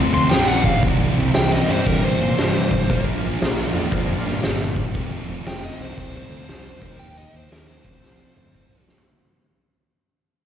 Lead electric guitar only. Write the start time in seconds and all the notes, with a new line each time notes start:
0.14 C6
0.30 G5
0.47 F#5
0.65 F5
1.35 G5
1.52 D#5
1.70 C5
1.86 A#4
2.04 C5
5.47 G5
5.64 D#5
5.82 C5
6.00 C5
6.17 C5
7.00 G5
7.18 D#5
7.37 C5
7.51 A#4
7.68 C5
7.86 C5